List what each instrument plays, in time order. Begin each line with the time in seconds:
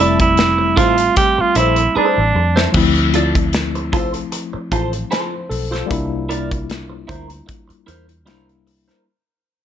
Already playing: fingered electric bass F1, tine electric piano G3 A3 C4 E5, clean electric guitar E4
0.00 tenor saxophone E4, clean electric guitar A4 D5
0.20 tenor saxophone E4, kick, closed hi-hat
0.37 snare, closed hi-hat
0.58 muted clean electric guitar stroke
0.76 fingered electric bass A1, clean electric guitar E4 A4 C5, tenor saxophone F4, kick, closed hi-hat
0.98 muted clean electric guitar stroke, closed hi-hat
1.16 tenor saxophone G4, muted clean electric guitar stroke, kick, closed hi-hat
1.38 tenor saxophone F4, muted clean electric guitar stroke, muted fingered electric bass stroke
1.55 fingered electric bass A#1, clean electric guitar E4 A4 C5, tenor saxophone E4, closed hi-hat
1.76 muted clean electric guitar stroke, closed hi-hat
1.96 tenor saxophone D4, clean electric guitar E4 A4 C5, muted fingered electric bass stroke
2.18 fingered electric bass A1
2.35 fingered electric bass F2, muted clean electric guitar stroke
2.56 clean electric guitar E4 A4 C5, snare
2.72 fingered electric bass D2, tine electric piano F3 A3 C4, kick, crash
2.77 tine electric piano E4
2.95 closed hi-hat
3.14 clean electric guitar F4 A4 D5, closed hi-hat
3.35 kick, closed hi-hat
3.53 snare, closed hi-hat
3.75 muted clean electric guitar stroke, closed hi-hat
3.93 fingered electric bass C2, clean electric guitar F4 A4 C5, kick, closed hi-hat
4.13 muted clean electric guitar stroke, closed hi-hat
4.32 muted clean electric guitar stroke, closed hi-hat
4.53 muted clean electric guitar stroke, muted fingered electric bass stroke
4.72 fingered electric bass A1, clean electric guitar F4 A4 C5, kick, closed hi-hat
4.93 muted clean electric guitar stroke, closed hi-hat
5.11 clean electric guitar F4 A4 C5, tine electric piano C5, snare, closed hi-hat
5.50 fingered electric bass B1, tine electric piano A4, muted clean electric guitar stroke, open hi-hat
5.71 tine electric piano F4, clean electric guitar F4 A4 C5, snare, closed hi-hat
5.86 tine electric piano G3 A#3
5.90 fingered electric bass C2, tine electric piano D4 E4, kick, closed hi-hat
6.29 clean electric guitar E4 A#4 D5, closed hi-hat
6.51 kick, closed hi-hat
6.70 snare, closed hi-hat
6.90 muted clean electric guitar stroke
7.08 fingered electric bass D2, clean electric guitar E4 A#4 C5, kick, closed hi-hat
7.28 muted clean electric guitar stroke, closed hi-hat
7.47 muted clean electric guitar stroke, kick, closed hi-hat
7.68 muted clean electric guitar stroke, muted fingered electric bass stroke, closed hi-hat
7.86 fingered electric bass E2, clean electric guitar E4 A#4 C5, closed hi-hat
8.08 muted clean electric guitar stroke, closed hi-hat
8.25 fingered electric bass C2, tine electric piano G3 A#3 D4 E4, clean electric guitar E4 A#4 C5, snare, closed hi-hat
8.49 closed hi-hat
8.67 muted clean electric guitar stroke, open hi-hat
8.88 clean electric guitar E4 A#4 C5, snare, closed hi-hat